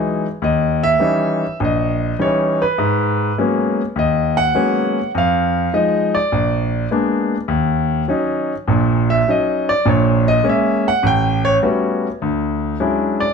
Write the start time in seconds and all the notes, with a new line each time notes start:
Already playing: E3 F#3 G#3 D#4
0.42 D#2 D#5
0.83 E5
0.99 E3 G3 C#4 D#4
1.60 A#1
1.64 D#5
2.19 E3 G3 C#4 D#4 C#5
2.62 B4
2.78 G#2
3.38 F#3 G#3 A#3 B3 C#4
3.96 D#2 D#5
4.37 F#5
4.55 F#3 G#3 A#3 B3 C#4
5.15 F2 F5
5.73 F3 G#3 D#4 D#5
6.15 D5
6.32 A#1
6.91 G#3 A#3 B3 D4
7.48 D#2
8.08 F#3 C#4 D#4
8.68 A#1 A#2
9.10 E5
9.28 F#3 C#4 D#4 D#5
9.69 D5
9.85 A#1 A#2 C#5
10.28 D#5
10.44 G#3 A#3 C#4
10.49 E5
10.88 F#5
11.03 A1 G5
11.45 C#5
11.63 G3 A3 B3 C#4 F#4
12.22 D2
12.80 F#3 G#3 C#4 D4 E4
13.20 D5